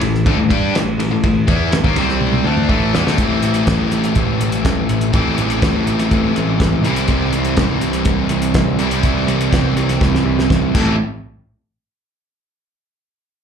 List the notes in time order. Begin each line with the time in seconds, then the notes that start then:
0.01 A1 A2 E3, ride
0.15 snare
0.26 D2 D3 A3, kick, ride
0.37 A1 A2 E3
0.50 G2 G3 D4 G4, kick, ride
0.74 A1 A2 E3, snare, ride
0.98 A1 A2 E3, ride
1.11 A1 A2 E3
1.23 A1 A2 E3, kick, ride
1.47 E2 E3 B3 E4, kick, ride
1.72 A1 A2 E3, snare, ride
1.84 D#2 D#3 A#3, kick
1.96 C2 C3 G3 C4, ride
2.09 snare
2.21 high tom
2.33 high tom
2.44 D2 D3 A3 D4
2.57 mid tom
2.68 A1 A2 E3 A3, kick
2.94 E2 E3 B3, snare
3.05 D2 D3 A3, snare
3.17 A1 A2 E3 A3 C4, kick, closed hi-hat
3.21 E4
3.42 A1, closed hi-hat
3.54 closed hi-hat
3.67 A1, kick, snare, closed hi-hat
3.92 A1, closed hi-hat
4.04 closed hi-hat
4.15 A1, kick, closed hi-hat
4.41 A1, closed hi-hat
4.52 closed hi-hat
4.64 A1, kick, snare, closed hi-hat
4.89 A1, closed hi-hat
5.01 closed hi-hat
5.12 A1 A2 E3 A3 C4, kick, closed hi-hat
5.16 E4
5.38 A1, closed hi-hat
5.50 closed hi-hat
5.62 A1, kick, snare, closed hi-hat
5.87 A1, closed hi-hat
5.99 snare, closed hi-hat
6.11 A1, kick, closed hi-hat
6.36 A1, closed hi-hat
6.60 A1, kick, snare, closed hi-hat
6.83 C2 C3 E3 G3, closed hi-hat
6.87 C4 E4
6.96 closed hi-hat
7.08 C2, kick, closed hi-hat
7.33 C2, closed hi-hat
7.45 closed hi-hat
7.57 C2, kick, snare, closed hi-hat
7.81 C2, closed hi-hat
7.93 closed hi-hat
8.05 C2, kick, closed hi-hat
8.29 C2, closed hi-hat
8.42 closed hi-hat
8.54 C2, kick, snare, closed hi-hat
8.78 C2 C3 E3 G3 C4 E4, closed hi-hat
8.91 closed hi-hat
9.03 C2, kick, closed hi-hat
9.27 C2, closed hi-hat
9.41 closed hi-hat
9.52 C2, kick, snare, closed hi-hat
9.76 C2, closed hi-hat
9.89 snare, closed hi-hat
10.01 C2, kick, snare
10.15 snare
10.25 C2
10.39 snare
10.50 C2, kick, snare
10.75 A1 A2 E3 A3 C4 E4 A4, kick, crash